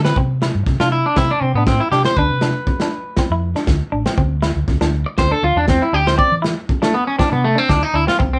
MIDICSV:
0, 0, Header, 1, 6, 480
1, 0, Start_track
1, 0, Tempo, 502092
1, 160, Time_signature, 4, 2, 24, 8
1, 8023, End_track
2, 0, Start_track
2, 0, Title_t, "Clean electric guitar"
2, 0, Program_c, 0, 27
2, 44, Note_on_c, 0, 71, 67
2, 152, Note_off_c, 0, 71, 0
2, 765, Note_on_c, 0, 65, 65
2, 875, Note_off_c, 0, 65, 0
2, 880, Note_on_c, 0, 64, 74
2, 1004, Note_off_c, 0, 64, 0
2, 1013, Note_on_c, 0, 62, 66
2, 1118, Note_on_c, 0, 64, 78
2, 1119, Note_off_c, 0, 62, 0
2, 1243, Note_off_c, 0, 64, 0
2, 1251, Note_on_c, 0, 62, 69
2, 1360, Note_off_c, 0, 62, 0
2, 1360, Note_on_c, 0, 60, 83
2, 1483, Note_off_c, 0, 60, 0
2, 1487, Note_on_c, 0, 59, 64
2, 1594, Note_off_c, 0, 59, 0
2, 1598, Note_on_c, 0, 60, 63
2, 1723, Note_off_c, 0, 60, 0
2, 1723, Note_on_c, 0, 64, 69
2, 1828, Note_off_c, 0, 64, 0
2, 1832, Note_on_c, 0, 67, 81
2, 1960, Note_off_c, 0, 67, 0
2, 1964, Note_on_c, 0, 72, 96
2, 2071, Note_off_c, 0, 72, 0
2, 2071, Note_on_c, 0, 71, 80
2, 3514, Note_off_c, 0, 71, 0
2, 4958, Note_on_c, 0, 72, 79
2, 5085, Note_off_c, 0, 72, 0
2, 5085, Note_on_c, 0, 69, 81
2, 5194, Note_off_c, 0, 69, 0
2, 5201, Note_on_c, 0, 65, 82
2, 5324, Note_off_c, 0, 65, 0
2, 5329, Note_on_c, 0, 62, 72
2, 5436, Note_off_c, 0, 62, 0
2, 5440, Note_on_c, 0, 60, 68
2, 5563, Note_off_c, 0, 60, 0
2, 5565, Note_on_c, 0, 64, 71
2, 5680, Note_off_c, 0, 64, 0
2, 5680, Note_on_c, 0, 67, 89
2, 5803, Note_off_c, 0, 67, 0
2, 5806, Note_on_c, 0, 72, 80
2, 5910, Note_off_c, 0, 72, 0
2, 5913, Note_on_c, 0, 74, 86
2, 6059, Note_off_c, 0, 74, 0
2, 6526, Note_on_c, 0, 57, 65
2, 6634, Note_off_c, 0, 57, 0
2, 6637, Note_on_c, 0, 59, 78
2, 6758, Note_off_c, 0, 59, 0
2, 6762, Note_on_c, 0, 61, 68
2, 6872, Note_off_c, 0, 61, 0
2, 6877, Note_on_c, 0, 62, 80
2, 7000, Note_off_c, 0, 62, 0
2, 7004, Note_on_c, 0, 59, 67
2, 7113, Note_off_c, 0, 59, 0
2, 7117, Note_on_c, 0, 57, 78
2, 7247, Note_off_c, 0, 57, 0
2, 7247, Note_on_c, 0, 60, 72
2, 7354, Note_off_c, 0, 60, 0
2, 7354, Note_on_c, 0, 62, 67
2, 7483, Note_off_c, 0, 62, 0
2, 7483, Note_on_c, 0, 63, 76
2, 7592, Note_off_c, 0, 63, 0
2, 7603, Note_on_c, 0, 64, 82
2, 7723, Note_off_c, 0, 64, 0
2, 7726, Note_on_c, 0, 65, 83
2, 7834, Note_off_c, 0, 65, 0
2, 7967, Note_on_c, 0, 60, 68
2, 8023, Note_off_c, 0, 60, 0
2, 8023, End_track
3, 0, Start_track
3, 0, Title_t, "Clean electric guitar"
3, 0, Program_c, 1, 27
3, 49, Note_on_c, 1, 60, 69
3, 127, Note_off_c, 1, 60, 0
3, 166, Note_on_c, 1, 60, 81
3, 333, Note_off_c, 1, 60, 0
3, 406, Note_on_c, 1, 64, 71
3, 573, Note_off_c, 1, 64, 0
3, 773, Note_on_c, 1, 62, 67
3, 940, Note_off_c, 1, 62, 0
3, 1126, Note_on_c, 1, 60, 81
3, 1214, Note_off_c, 1, 60, 0
3, 1256, Note_on_c, 1, 62, 70
3, 1422, Note_off_c, 1, 62, 0
3, 1505, Note_on_c, 1, 62, 68
3, 1668, Note_off_c, 1, 62, 0
3, 1841, Note_on_c, 1, 62, 72
3, 1931, Note_off_c, 1, 62, 0
3, 1983, Note_on_c, 1, 60, 67
3, 2056, Note_off_c, 1, 60, 0
3, 2090, Note_on_c, 1, 62, 84
3, 2255, Note_off_c, 1, 62, 0
3, 2315, Note_on_c, 1, 62, 74
3, 2485, Note_off_c, 1, 62, 0
3, 2694, Note_on_c, 1, 62, 71
3, 2860, Note_off_c, 1, 62, 0
3, 3047, Note_on_c, 1, 60, 85
3, 3135, Note_off_c, 1, 60, 0
3, 3172, Note_on_c, 1, 64, 71
3, 3339, Note_off_c, 1, 64, 0
3, 3403, Note_on_c, 1, 62, 72
3, 3574, Note_off_c, 1, 62, 0
3, 3749, Note_on_c, 1, 62, 78
3, 3843, Note_off_c, 1, 62, 0
3, 3883, Note_on_c, 1, 60, 68
3, 3963, Note_off_c, 1, 60, 0
3, 3994, Note_on_c, 1, 60, 86
3, 4164, Note_off_c, 1, 60, 0
3, 4230, Note_on_c, 1, 64, 70
3, 4402, Note_off_c, 1, 64, 0
3, 4600, Note_on_c, 1, 62, 71
3, 4771, Note_off_c, 1, 62, 0
3, 4959, Note_on_c, 1, 60, 82
3, 5049, Note_off_c, 1, 60, 0
3, 5080, Note_on_c, 1, 62, 70
3, 5251, Note_off_c, 1, 62, 0
3, 5324, Note_on_c, 1, 62, 68
3, 5494, Note_off_c, 1, 62, 0
3, 5672, Note_on_c, 1, 62, 73
3, 5765, Note_off_c, 1, 62, 0
3, 5805, Note_on_c, 1, 60, 65
3, 5884, Note_off_c, 1, 60, 0
3, 5906, Note_on_c, 1, 60, 83
3, 6079, Note_off_c, 1, 60, 0
3, 6139, Note_on_c, 1, 64, 70
3, 6315, Note_off_c, 1, 64, 0
3, 6519, Note_on_c, 1, 62, 73
3, 6690, Note_off_c, 1, 62, 0
3, 6870, Note_on_c, 1, 60, 87
3, 6963, Note_off_c, 1, 60, 0
3, 6977, Note_on_c, 1, 62, 72
3, 7156, Note_off_c, 1, 62, 0
3, 7223, Note_on_c, 1, 62, 65
3, 7400, Note_off_c, 1, 62, 0
3, 7592, Note_on_c, 1, 62, 70
3, 7684, Note_off_c, 1, 62, 0
3, 7717, Note_on_c, 1, 60, 66
3, 7798, Note_off_c, 1, 60, 0
3, 7828, Note_on_c, 1, 60, 87
3, 8000, Note_off_c, 1, 60, 0
3, 8023, End_track
4, 0, Start_track
4, 0, Title_t, "Fingered electric bass"
4, 0, Program_c, 2, 33
4, 0, Note_on_c, 2, 50, 81
4, 136, Note_off_c, 2, 50, 0
4, 157, Note_on_c, 2, 48, 90
4, 485, Note_off_c, 2, 48, 0
4, 526, Note_on_c, 2, 43, 86
4, 625, Note_off_c, 2, 43, 0
4, 636, Note_on_c, 2, 48, 82
4, 751, Note_off_c, 2, 48, 0
4, 763, Note_on_c, 2, 48, 77
4, 978, Note_off_c, 2, 48, 0
4, 1113, Note_on_c, 2, 48, 96
4, 1230, Note_off_c, 2, 48, 0
4, 1348, Note_on_c, 2, 48, 81
4, 1467, Note_off_c, 2, 48, 0
4, 1476, Note_on_c, 2, 45, 96
4, 1693, Note_off_c, 2, 45, 0
4, 1829, Note_on_c, 2, 48, 84
4, 1947, Note_off_c, 2, 48, 0
4, 2070, Note_on_c, 2, 38, 96
4, 2188, Note_off_c, 2, 38, 0
4, 2193, Note_on_c, 2, 48, 81
4, 2412, Note_off_c, 2, 48, 0
4, 3156, Note_on_c, 2, 41, 85
4, 3373, Note_off_c, 2, 41, 0
4, 3517, Note_on_c, 2, 38, 98
4, 3631, Note_off_c, 2, 38, 0
4, 3749, Note_on_c, 2, 33, 82
4, 3867, Note_off_c, 2, 33, 0
4, 3992, Note_on_c, 2, 38, 93
4, 4321, Note_off_c, 2, 38, 0
4, 4354, Note_on_c, 2, 38, 91
4, 4458, Note_off_c, 2, 38, 0
4, 4469, Note_on_c, 2, 38, 85
4, 4587, Note_off_c, 2, 38, 0
4, 4595, Note_on_c, 2, 38, 85
4, 4812, Note_off_c, 2, 38, 0
4, 4950, Note_on_c, 2, 38, 99
4, 5067, Note_off_c, 2, 38, 0
4, 5189, Note_on_c, 2, 38, 82
4, 5307, Note_off_c, 2, 38, 0
4, 5313, Note_on_c, 2, 40, 92
4, 5532, Note_off_c, 2, 40, 0
4, 5667, Note_on_c, 2, 38, 84
4, 5884, Note_off_c, 2, 38, 0
4, 6039, Note_on_c, 2, 52, 74
4, 6255, Note_off_c, 2, 52, 0
4, 6997, Note_on_c, 2, 48, 84
4, 7213, Note_off_c, 2, 48, 0
4, 7356, Note_on_c, 2, 38, 99
4, 7470, Note_off_c, 2, 38, 0
4, 7585, Note_on_c, 2, 38, 83
4, 7704, Note_off_c, 2, 38, 0
4, 7836, Note_on_c, 2, 36, 100
4, 8023, Note_off_c, 2, 36, 0
4, 8023, End_track
5, 0, Start_track
5, 0, Title_t, "Muted clean electric guitar strokes"
5, 4841, Note_on_c, 9, 29, 78
5, 4936, Note_off_c, 9, 29, 0
5, 7845, Note_on_c, 9, 29, 75
5, 7941, Note_off_c, 9, 29, 0
5, 8023, End_track
6, 0, Start_track
6, 0, Title_t, "Drums"
6, 44, Note_on_c, 9, 38, 69
6, 140, Note_off_c, 9, 38, 0
6, 155, Note_on_c, 9, 36, 83
6, 251, Note_off_c, 9, 36, 0
6, 399, Note_on_c, 9, 38, 65
6, 494, Note_off_c, 9, 38, 0
6, 636, Note_on_c, 9, 36, 87
6, 636, Note_on_c, 9, 38, 24
6, 731, Note_off_c, 9, 36, 0
6, 731, Note_off_c, 9, 38, 0
6, 764, Note_on_c, 9, 38, 68
6, 860, Note_off_c, 9, 38, 0
6, 1111, Note_on_c, 9, 38, 64
6, 1115, Note_on_c, 9, 36, 88
6, 1206, Note_off_c, 9, 38, 0
6, 1210, Note_off_c, 9, 36, 0
6, 1593, Note_on_c, 9, 38, 67
6, 1594, Note_on_c, 9, 36, 85
6, 1689, Note_off_c, 9, 36, 0
6, 1689, Note_off_c, 9, 38, 0
6, 1831, Note_on_c, 9, 38, 26
6, 1927, Note_off_c, 9, 38, 0
6, 1956, Note_on_c, 9, 38, 70
6, 2052, Note_off_c, 9, 38, 0
6, 2071, Note_on_c, 9, 36, 78
6, 2167, Note_off_c, 9, 36, 0
6, 2306, Note_on_c, 9, 38, 66
6, 2402, Note_off_c, 9, 38, 0
6, 2551, Note_on_c, 9, 36, 81
6, 2647, Note_off_c, 9, 36, 0
6, 2674, Note_on_c, 9, 38, 66
6, 2770, Note_off_c, 9, 38, 0
6, 3027, Note_on_c, 9, 38, 69
6, 3031, Note_on_c, 9, 36, 81
6, 3122, Note_off_c, 9, 38, 0
6, 3127, Note_off_c, 9, 36, 0
6, 3397, Note_on_c, 9, 38, 25
6, 3493, Note_off_c, 9, 38, 0
6, 3510, Note_on_c, 9, 38, 69
6, 3513, Note_on_c, 9, 36, 89
6, 3606, Note_off_c, 9, 38, 0
6, 3608, Note_off_c, 9, 36, 0
6, 3879, Note_on_c, 9, 38, 70
6, 3974, Note_off_c, 9, 38, 0
6, 3993, Note_on_c, 9, 36, 82
6, 4088, Note_off_c, 9, 36, 0
6, 4230, Note_on_c, 9, 38, 67
6, 4325, Note_off_c, 9, 38, 0
6, 4471, Note_on_c, 9, 38, 26
6, 4472, Note_on_c, 9, 36, 86
6, 4566, Note_off_c, 9, 38, 0
6, 4568, Note_off_c, 9, 36, 0
6, 4598, Note_on_c, 9, 38, 71
6, 4694, Note_off_c, 9, 38, 0
6, 4949, Note_on_c, 9, 38, 65
6, 4953, Note_on_c, 9, 36, 82
6, 5045, Note_off_c, 9, 38, 0
6, 5049, Note_off_c, 9, 36, 0
6, 5427, Note_on_c, 9, 38, 70
6, 5433, Note_on_c, 9, 36, 81
6, 5523, Note_off_c, 9, 38, 0
6, 5529, Note_off_c, 9, 36, 0
6, 5804, Note_on_c, 9, 38, 69
6, 5900, Note_off_c, 9, 38, 0
6, 5915, Note_on_c, 9, 36, 89
6, 6010, Note_off_c, 9, 36, 0
6, 6161, Note_on_c, 9, 38, 69
6, 6256, Note_off_c, 9, 38, 0
6, 6397, Note_on_c, 9, 36, 85
6, 6493, Note_off_c, 9, 36, 0
6, 6526, Note_on_c, 9, 38, 70
6, 6622, Note_off_c, 9, 38, 0
6, 6877, Note_on_c, 9, 36, 88
6, 6879, Note_on_c, 9, 38, 67
6, 6972, Note_off_c, 9, 36, 0
6, 6974, Note_off_c, 9, 38, 0
6, 7356, Note_on_c, 9, 36, 86
6, 7357, Note_on_c, 9, 38, 69
6, 7452, Note_off_c, 9, 36, 0
6, 7452, Note_off_c, 9, 38, 0
6, 7727, Note_on_c, 9, 38, 70
6, 7822, Note_off_c, 9, 38, 0
6, 7838, Note_on_c, 9, 36, 81
6, 7840, Note_on_c, 9, 62, 27
6, 7934, Note_off_c, 9, 36, 0
6, 7936, Note_off_c, 9, 62, 0
6, 8023, End_track
0, 0, End_of_file